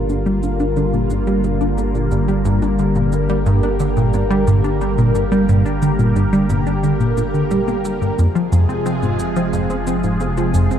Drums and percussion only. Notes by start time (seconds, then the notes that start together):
0.09 high conga, shaker
0.26 shaker
0.43 shaker
0.60 high conga, shaker
0.76 shaker
0.93 shaker
1.10 shaker
1.27 high conga, shaker
1.44 shaker
1.61 shaker
1.78 high conga, shaker
1.95 shaker
2.11 shaker
2.28 shaker
2.45 high conga, shaker
2.62 shaker
2.79 shaker
2.95 high conga, shaker
3.12 shaker
3.29 shaker
3.46 shaker
3.63 high conga, shaker
3.80 shaker
3.97 shaker
4.14 high conga, shaker
4.30 shaker
4.47 shaker
4.64 shaker
4.81 high conga, shaker
4.98 shaker
5.15 shaker
5.32 high conga, shaker
5.49 shaker
5.66 shaker
5.82 shaker
5.99 high conga, shaker
6.16 shaker
6.33 shaker
6.50 high conga, shaker
6.67 shaker
6.83 shaker
7.00 shaker
7.17 high conga, shaker
7.34 shaker
7.51 shaker
7.68 high conga, shaker
7.85 shaker
8.02 shaker
8.19 shaker
8.35 shaker
8.52 high conga, shaker
8.69 shaker
8.86 shaker
9.03 high conga, shaker
9.19 shaker
9.36 shaker
9.53 shaker
9.70 high conga, shaker
9.87 shaker
10.04 shaker
10.20 high conga, shaker
10.37 shaker
10.54 shaker
10.71 shaker